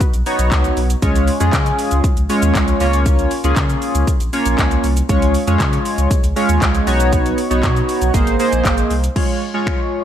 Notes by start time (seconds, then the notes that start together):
0.01 kick, closed hi-hat, shaker
0.14 B1, closed hi-hat, shaker
0.26 B3 D#4 F#4 C#5, open hi-hat, shaker
0.39 B1, closed hi-hat, shaker
0.52 C#2, kick, clap, closed hi-hat, shaker
0.64 closed hi-hat, shaker
0.77 B1, open hi-hat, shaker
0.90 closed hi-hat, shaker
1.02 C#2 G#3 C#4 F4 C#5, kick, closed hi-hat, shaker
1.15 closed hi-hat, shaker
1.28 open hi-hat, shaker
1.40 F2 G#3 C#4 F4 G#4, closed hi-hat, shaker
1.53 C#3, kick, clap, closed hi-hat, shaker
1.66 closed hi-hat, shaker
1.79 open hi-hat, shaker
1.91 C#2, closed hi-hat, shaker
2.04 kick, closed hi-hat, shaker
2.17 C#2, closed hi-hat, shaker
2.29 G#3 C#4 F4 C#5, open hi-hat, shaker
2.42 D#2, closed hi-hat, shaker
2.55 C#2, kick, clap, closed hi-hat, shaker
2.68 closed hi-hat, shaker
2.80 C#2 A#3 C#4 F4 C#5, open hi-hat, shaker
2.93 closed hi-hat, shaker
3.06 kick, closed hi-hat, shaker
3.19 closed hi-hat, shaker
3.31 open hi-hat, shaker
3.44 C#2 A#3 C#4 F4 G#4, closed hi-hat, shaker
3.56 C#3, kick, clap, closed hi-hat, shaker
3.70 closed hi-hat, shaker
3.82 open hi-hat, shaker
3.95 C#2, closed hi-hat, shaker
4.07 kick, closed hi-hat, shaker
4.20 A#1, closed hi-hat, shaker
4.33 A#3 C#4 F4 C#5, open hi-hat, shaker
4.46 A#1, closed hi-hat, shaker
4.58 C#2, kick, clap, closed hi-hat, shaker
4.71 closed hi-hat, shaker
4.84 C2, open hi-hat, shaker
4.97 closed hi-hat, shaker
5.09 C#2 G#3 C#4 F4 C#5, kick, closed hi-hat, shaker
5.22 closed hi-hat, shaker
5.35 open hi-hat, shaker
5.47 F2 G#3 C#4 F4 C#5, closed hi-hat, shaker
5.60 C#3, kick, clap, closed hi-hat, shaker
5.73 closed hi-hat, shaker
5.85 open hi-hat, shaker
5.98 C#2, closed hi-hat, shaker
6.11 kick, closed hi-hat, shaker
6.24 C#2, closed hi-hat, shaker
6.36 G#3 C#4 F4 C#5, open hi-hat, shaker
6.49 D#2, closed hi-hat, shaker
6.62 C#2, kick, clap, closed hi-hat, shaker
6.75 closed hi-hat, shaker
6.87 B1 B3 D#4 F#4 C#5, open hi-hat, shaker
7.00 closed hi-hat, shaker
7.13 kick, closed hi-hat, shaker
7.26 closed hi-hat, shaker
7.38 open hi-hat, shaker
7.50 B1 B3 D#4 F#4 C#5, closed hi-hat, shaker
7.63 B2, kick, clap, closed hi-hat, shaker
7.76 closed hi-hat, shaker
7.89 open hi-hat, shaker
8.02 B1, closed hi-hat, shaker
8.14 G#1 A#3 D#4 G#4 C5, kick, closed hi-hat, shaker
8.27 G#1, closed hi-hat, shaker
8.39 A#3 D#4 G#4 C5, open hi-hat, shaker
8.53 A#1, closed hi-hat, shaker
8.65 G#1, kick, clap, closed hi-hat, shaker
8.78 closed hi-hat, shaker
8.91 C2, open hi-hat, shaker
9.04 closed hi-hat, shaker
9.16 G#3 F4 C#5, kick, crash
9.54 G#3 F4 C#5
9.67 finger snap, kick